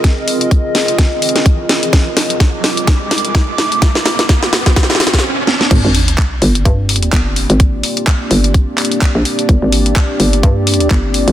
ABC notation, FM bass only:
X:1
M:4/4
L:1/16
Q:"Swing 16ths" 1/4=127
K:Gphr
V:1 name="FM bass" clef=bass
z16 | z16 | z16 | G,,, A,,,3 z2 G,,,2 G,,4 G,,,3 A,,,- |
A,,,2 z4 G,,,3 z4 B,,, z2 | G,,, A,,,3 z2 G,,,2 G,,4 G,,,3 A,,, |]